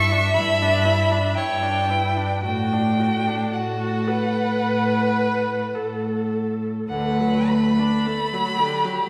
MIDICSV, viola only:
0, 0, Header, 1, 2, 480
1, 0, Start_track
1, 0, Key_signature, 2, "major"
1, 0, Tempo, 1006711
1, 647, Tempo, 1081081
1, 1126, Time_signature, 4, 2, 24, 8
1, 1127, Tempo, 1102941
1, 2567, Tempo, 1149425
1, 3527, Tempo, 1029160
1, 4015, End_track
2, 0, Start_track
2, 0, Title_t, "Viola"
2, 0, Program_c, 0, 41
2, 0, Note_on_c, 0, 64, 78
2, 56, Note_on_c, 0, 62, 69
2, 63, Note_off_c, 0, 64, 0
2, 167, Note_off_c, 0, 62, 0
2, 175, Note_on_c, 0, 64, 79
2, 296, Note_on_c, 0, 62, 71
2, 304, Note_off_c, 0, 64, 0
2, 408, Note_on_c, 0, 64, 72
2, 415, Note_off_c, 0, 62, 0
2, 534, Note_on_c, 0, 62, 65
2, 541, Note_off_c, 0, 64, 0
2, 650, Note_off_c, 0, 62, 0
2, 653, Note_on_c, 0, 64, 62
2, 768, Note_on_c, 0, 62, 64
2, 774, Note_off_c, 0, 64, 0
2, 888, Note_on_c, 0, 64, 58
2, 894, Note_off_c, 0, 62, 0
2, 1009, Note_on_c, 0, 62, 57
2, 1015, Note_off_c, 0, 64, 0
2, 1124, Note_off_c, 0, 62, 0
2, 1126, Note_on_c, 0, 66, 57
2, 1254, Note_on_c, 0, 62, 53
2, 1261, Note_off_c, 0, 66, 0
2, 1371, Note_on_c, 0, 66, 49
2, 1377, Note_off_c, 0, 62, 0
2, 1491, Note_on_c, 0, 62, 52
2, 1498, Note_off_c, 0, 66, 0
2, 1606, Note_off_c, 0, 62, 0
2, 1608, Note_on_c, 0, 66, 66
2, 1844, Note_on_c, 0, 71, 84
2, 1851, Note_off_c, 0, 66, 0
2, 2568, Note_on_c, 0, 69, 56
2, 2574, Note_off_c, 0, 71, 0
2, 3044, Note_off_c, 0, 69, 0
2, 3049, Note_on_c, 0, 50, 65
2, 3175, Note_on_c, 0, 54, 59
2, 3181, Note_off_c, 0, 50, 0
2, 3300, Note_on_c, 0, 57, 57
2, 3306, Note_off_c, 0, 54, 0
2, 3422, Note_on_c, 0, 62, 58
2, 3428, Note_off_c, 0, 57, 0
2, 3539, Note_on_c, 0, 57, 65
2, 3546, Note_off_c, 0, 62, 0
2, 3663, Note_on_c, 0, 54, 56
2, 3670, Note_off_c, 0, 57, 0
2, 3784, Note_on_c, 0, 50, 65
2, 3791, Note_off_c, 0, 54, 0
2, 3902, Note_on_c, 0, 54, 56
2, 3909, Note_off_c, 0, 50, 0
2, 4012, Note_off_c, 0, 54, 0
2, 4015, End_track
0, 0, End_of_file